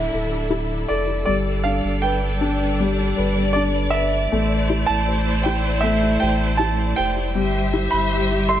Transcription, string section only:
Already playing: D3 D4 E4 A4
1.28 G3 D4 D5
4.33 A3 E4 C5
7.36 G3 G4 C5 E5

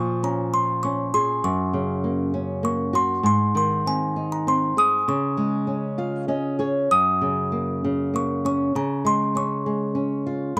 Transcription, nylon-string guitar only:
Already playing: A#2 F3
0.23 C#4
0.53 F4
0.84 C#4
1.14 G#4
1.44 F#2
1.73 C#3
2.04 A#3
2.34 C#4
2.63 A#3
2.93 F#4
3.23 G#2
3.55 D#3
3.86 C4
4.16 D#4
4.47 C4
4.77 G#4
5.08 C#3
5.37 G#3
5.67 C#4
5.98 F4 F5
6.28 C#4 D#5
6.59 G#4 C#5
6.91 F#2
7.22 C#3
7.52 A#3
7.84 C#3
8.14 A#3
8.45 C#4
8.75 C#3
9.05 G#3
9.35 C#4
9.66 G#3
9.95 C#4
10.27 F4
10.57 A2

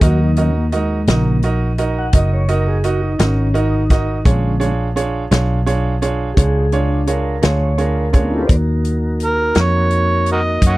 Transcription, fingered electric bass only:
0.01 D#2
1.08 A#1
2.14 F#1
3.20 G#1
4.25 A#1
5.31 B1
6.37 C#2
7.43 D2
8.49 D#2
9.56 F2
10.62 F#2

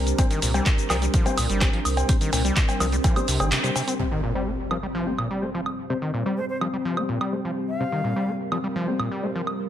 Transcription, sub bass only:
Already playing: C2
0.42 C2
0.90 C2
1.38 C2
1.50 G1
1.85 C2
2.33 C2
2.80 C2
3.28 C2
3.40 G1

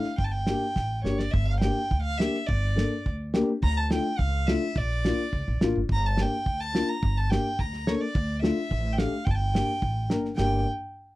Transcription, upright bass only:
0.19 G1
0.76 A1
1.04 G1
1.34 G1
1.91 D2
2.49 G1
3.06 D2
3.63 D2
4.19 C#2
4.76 A#1
5.33 C#2
5.48 A#1
5.62 A1
5.75 G1
5.89 G1
6.46 D2
7.03 G1
7.60 D2
8.16 D2
8.72 A1
9.27 G1
9.82 A1
10.10 G1
10.39 G1

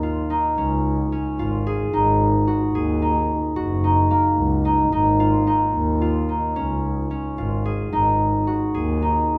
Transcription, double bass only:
Already playing: D#2
0.58 C#2
1.39 G#1
1.93 G#1
2.75 D#2
3.57 F#1
4.38 C#2
4.93 G#1
5.75 D#2
6.57 C#2
7.39 G#1
7.93 G#1
8.75 D#2

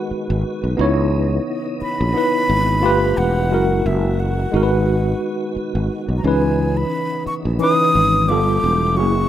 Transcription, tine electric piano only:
Already playing: G#3 D#4 F#4 B4
0.77 B3 D#4 E4
0.81 C#5
2.13 B3 D#4 E4
2.18 B4
2.81 A3 F4 G4
2.86 B4
3.50 G#3 E4 F#4
3.54 A#4
4.52 G#3 D#4 F#4
4.57 A#4
4.63 B4
6.23 E3 C#4 D#4
6.27 B4
7.59 E3 C#4 D#4
7.63 B4
8.27 G3 B3 F4
8.32 A4
8.95 F#3 A3 E4
9.00 A#3 G#4

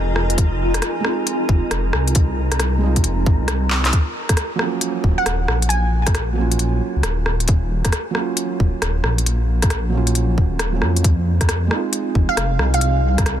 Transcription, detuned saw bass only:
Already playing: F1
1.49 F1
1.71 F1
1.94 C2
2.38 C2
3.04 F1
3.27 G#1
3.41 C2
5.04 D#1
5.26 D#1
5.49 A#1
5.93 A#1
6.96 C#2
7.04 D#1
8.60 D#1
8.82 D#1
9.04 A#1
9.49 A#1
10.38 D#1
10.82 F2
12.15 F1
12.37 F1
12.59 C2
13.04 C2

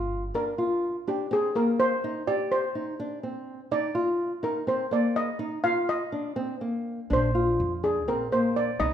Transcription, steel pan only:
0.35 A#4
1.08 G4
1.33 G#4
1.56 A#4
1.80 C5
2.27 D5
2.52 C5
3.72 D5
4.44 A#4
4.68 C5
4.93 D5
5.16 D#5
5.64 F5
5.89 D#5
7.13 C5
7.84 G#4
8.08 A#4
8.33 C5
8.56 D5
8.80 D#5

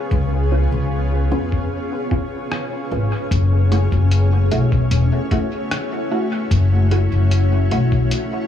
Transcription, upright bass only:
0.11 C#2
0.72 C#2
1.31 F2
2.91 G#1
3.31 F#1
3.92 F#1
4.51 B1
4.91 E1
6.51 F#1
7.12 F#1
7.71 B1

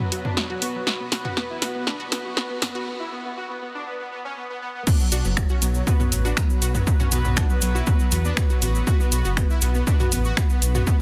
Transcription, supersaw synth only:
0.00 F#3
0.12 F#3
0.25 D4
0.37 F#3
0.50 F#3
0.62 F#4
0.75 F#3
0.87 F#4
1.00 B3
1.12 F#4
1.25 B3
1.37 B3
1.50 E4
1.62 B3
1.75 B3
1.87 D4
2.00 B3
2.12 B3
2.25 F#4
2.37 B3
2.50 B3
2.75 B3
2.87 B3
3.00 E4
3.12 B3
3.25 B3
3.37 F#4
3.50 B3
3.62 B3
3.75 D4
3.87 B3
4.00 B3
4.12 B3
4.25 C#4
4.37 B3
4.50 B3
4.62 B3
4.75 B3
4.87 D4
5.00 F#3
5.12 D4
5.25 F#3
5.37 F#3
5.50 C#4
5.62 F#3
5.75 F#3
5.87 B3
6.00 F#3
6.12 F#3
6.25 D4
6.37 F#3
6.50 F#3
6.75 F#3
6.87 F#3
7.00 C#4
7.12 F#3
7.25 F#3
7.37 D4
7.50 F#3
7.62 F#3
7.75 E4
7.87 F#3
8.00 F#3
8.12 F#3
8.25 D4
8.37 F#3
8.50 F#3
8.62 F#4
8.75 F#3
8.88 F#4
9.00 B3
9.12 F#4
9.25 B3
9.37 B3
9.50 E4
9.62 B3
9.75 B3
9.87 D4
10.00 B3
10.12 B3
10.25 F#4
10.37 B3
10.50 B3
10.75 B3
10.87 B3

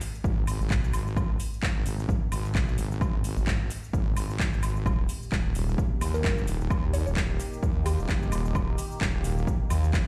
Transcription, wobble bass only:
0.24 G#1
0.60 G#1
0.70 B1
0.94 G#1
1.17 G#1
1.63 G#1
1.86 G#1
2.32 G#1
2.55 B1
2.78 G#1
3.01 G#1
3.37 G#1
3.93 G#1
4.17 G#1
4.53 G#1
4.86 D#1
5.32 D#1
5.55 D#1
6.01 D#2
6.24 G1
6.47 D#1
6.70 D#2
7.07 D#1
7.63 D#2
7.99 D#1
8.09 G1
8.32 D#1
8.55 D#1
9.01 D#1
9.24 D#1
9.70 D#2
9.93 G1

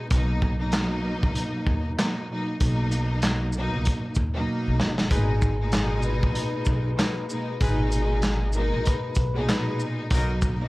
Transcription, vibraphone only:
5.11 G#4 G#5
6.04 B4 B5
7.61 G#4 G#5
8.55 A#4 A#5
8.86 B4 B5
9.36 G#4 G#5
9.49 B4 B5

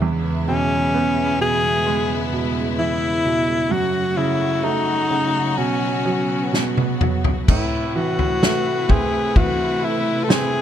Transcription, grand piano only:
0.02 E2
0.48 B2
0.94 B3
1.40 B2
1.86 G#3
2.33 B2
2.79 E3
3.25 B2
3.71 F#2
4.17 C#3
4.64 A3
5.10 C#3
5.58 B2
6.05 F#3
6.52 B2
7.01 F#3
7.49 A2
7.96 E3
8.43 A3
8.89 C4
9.36 E3
9.82 A3
10.28 C4

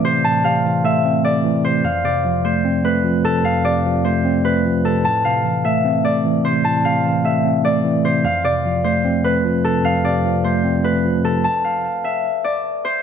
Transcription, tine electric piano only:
Already playing: A2 C3 E3 A3 C4
0.05 C3
0.25 A2
0.45 C3
0.65 E3
0.84 A3
1.05 C4
1.24 A3
1.44 E3
1.65 C3
1.84 F2
2.04 C3
2.25 F3
2.45 A3
2.65 C4
2.85 A3
3.04 F3
3.25 C3
3.44 F2
3.64 C3
3.85 F3
4.05 A3
4.25 C4
4.45 A3
4.65 F3
4.85 C3
5.05 A2
5.25 C3
5.45 E3
5.65 A3
5.85 C4
6.04 A3
6.25 E3
6.45 C3
6.65 A2
6.85 C3
7.05 E3
7.24 A3
7.45 C4
7.64 A3
7.84 E3
8.05 C3
8.24 F2
8.44 C3
8.65 F3
8.85 A3
9.04 C4
9.25 A3
9.44 F3
9.65 C3
9.84 F2
10.04 C3
10.25 F3
10.45 A3
10.65 C4
10.85 A3
11.05 F3
11.25 C3

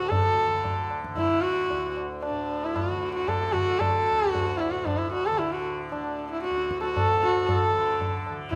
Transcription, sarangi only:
Already playing: F#4
0.09 A4
1.17 E4
1.41 F#4
2.23 D4
2.65 E4
2.76 F4
2.91 F#4
3.15 F#4
3.28 A4
3.52 F#4
3.79 A4
4.31 F#4
4.59 E4
4.71 F#4
4.85 D4
4.97 E4
5.12 F#4
5.26 A4
5.38 E4
5.52 F#4
5.91 D4
6.31 E4
6.44 F#4
6.80 F#4 A4
6.96 A4
7.22 F#4
7.48 A4
8.51 E4

